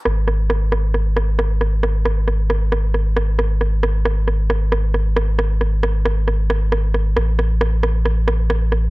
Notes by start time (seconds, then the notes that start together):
0.05 G#1, cross-stick
0.28 cross-stick
0.50 cross-stick
0.72 cross-stick
0.94 cross-stick
1.16 cross-stick
1.39 cross-stick
1.61 cross-stick
1.83 cross-stick
2.05 cross-stick
2.28 cross-stick
2.50 cross-stick
2.72 cross-stick
2.94 cross-stick
3.16 cross-stick
3.39 cross-stick
3.61 cross-stick
3.83 cross-stick
4.05 cross-stick
4.28 cross-stick
4.50 cross-stick
4.72 cross-stick
4.94 cross-stick
5.16 cross-stick
5.39 cross-stick
5.61 cross-stick
5.83 cross-stick
6.05 cross-stick
6.28 cross-stick
6.50 cross-stick
6.72 cross-stick
6.94 cross-stick
7.17 A1, cross-stick
7.39 cross-stick
7.61 cross-stick
7.83 cross-stick
8.05 cross-stick
8.28 cross-stick
8.50 cross-stick
8.72 cross-stick